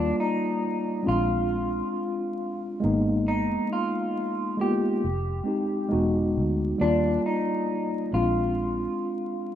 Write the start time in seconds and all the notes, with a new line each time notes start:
Already playing: D#2 G3 A#3 D4 F4 D5
0.20 D#4
1.03 G#3 C4 D4
1.07 A#1 F4
2.80 G#1 G#3 A#3 B3
2.84 D#4
3.28 D#4
3.73 F4
4.57 G#3 A#3 B3 F4 G4
5.04 F1
5.44 G#3 C4 D#4
5.48 G4
5.89 E1 G#3 B3 D#4
5.93 F#4
6.37 D2
6.78 D#2 G3 A#3 D4 D5
6.82 F4
7.26 D#4
8.12 A#1 G#3 C4 D4 F4
8.16 F4